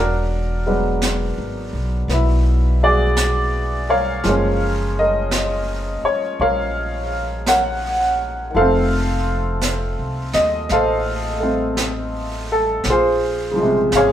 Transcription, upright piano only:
Already playing: D4 F#4 A#4
0.67 F#3 G#3 B3 D4
2.10 B3 E4
2.83 F#4 G#4 D5
3.89 A#4 C#5 F5
4.24 F3 G#3 A#3
4.29 C#4
4.99 A#4 D#5
6.05 C#5
6.41 A#4 C#5 F5
7.48 A#4 C#5 F#5
8.50 D#3 F3
8.56 A3 A4 C5 F5
8.61 C4
10.34 D#5
10.72 A4 C5 F5
11.40 A3 C4
12.52 A4
12.90 F4 G#4 C5
13.51 C#3
13.56 F3 G#3
13.63 C3
13.95 G#4 C#5 F5

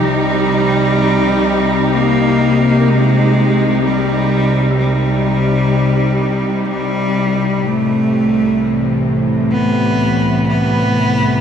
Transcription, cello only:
0.03 G3
1.94 A#3
2.89 G#3
3.84 G3
4.78 G3
6.68 G3
7.66 A3
9.51 B3
10.49 B3

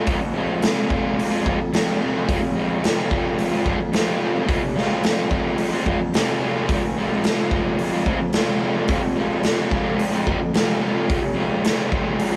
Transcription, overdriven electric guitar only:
0.06 F2 C3 F3 G#3 C4
0.10 F4
0.21 muted overdriven electric guitar stroke
0.34 F3 G#3 C4
0.38 F4
0.62 F2 C3 F3 G#3 C4 F4
0.89 F3 G#3 C4
0.93 F4
1.30 G#3 C4 F4
1.35 F3
1.45 F3 G#3 C4
1.49 F4
1.60 muted overdriven electric guitar stroke
1.73 F2 C3 F3 G#3 C4
1.77 F4
2.01 F3 G#3 C4 F4
2.15 F3 G#3 C4 F4
2.28 F2 C3 F3 G#3 C4 F4
2.42 muted overdriven electric guitar stroke
2.55 F3 G#3 C4
2.59 F4
2.82 F2 C3 F3 G#3 C4
2.87 F4
3.11 F3 G#3 C4 F4
3.52 G#3 C4 F4
3.56 F3
3.65 F3 G#3 C4 F4
3.80 muted overdriven electric guitar stroke
3.92 F2 C3 F3 G#3 C4
3.96 F4
4.20 F3 G#3 C4 F4
4.34 G#3 C4 F4
4.38 F3
4.47 F2 C3 F3 G#3 C4
4.51 F4
4.63 muted overdriven electric guitar stroke
4.76 F3 G#3 C4 F4
5.04 F2 C3 F3 G#3 C4 F4
5.31 F3 G#3 C4
5.36 F4
5.73 F3 G#3 C4 F4
5.86 F3 G#3 C4
5.90 F4
6.01 muted overdriven electric guitar stroke
6.14 F2 C3 F3 G#3 C4 F4
6.41 F3 G#3 C4
6.45 F4
6.55 F3 G#3 C4 F4
6.69 F2 C3 F3 G#3 C4
6.73 F4
6.84 muted overdriven electric guitar stroke
6.97 F3 G#3 C4 F4
7.24 F2 C3 F3 G#3 C4
7.28 F4
7.52 F3 G#3 C4 F4
7.93 F3 G#3 C4 F4
8.07 F3 G#3 C4
8.11 F4
8.21 muted overdriven electric guitar stroke
8.34 F2 C3 F3 G#3 C4 F4
8.61 F3 G#3 C4 F4
8.75 G#3 C4 F4
8.80 F3
8.88 F2 C3 F3 G#3 C4 F4
9.03 muted overdriven electric guitar stroke
9.16 F3 G#3 C4 F4
9.43 F2 C3 F3 G#3 C4
9.48 F4
9.70 F3 G#3 C4
9.74 F4
10.12 F3 G#3 C4 F4
10.26 F3 G#3 C4 F4
10.41 muted overdriven electric guitar stroke
10.53 F2 C3 F3 G#3 C4 F4
10.82 F3 G#3 C4 F4
10.95 G#3 C4 F4
10.99 F3
11.08 F2 C3 F3 G#3 C4
11.12 F4
11.22 muted overdriven electric guitar stroke
11.35 F3 G#3 C4 F4
11.63 F2 C3 F3 G#3 C4 F4
11.91 F3 G#3 C4
11.95 F4
12.32 F4

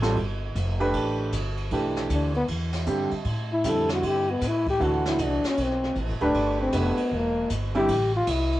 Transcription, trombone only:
2.14 D4
2.37 B3
3.53 E4
3.68 A4
3.92 F#4
4.07 G4
4.31 B3
4.47 E4
4.70 G4
4.85 F#4
5.08 E4
5.24 D4
5.47 C#4
5.62 C4
6.23 D4
6.62 C4
6.77 B3
7.16 A#3
7.77 G4
8.16 F4
8.31 E4

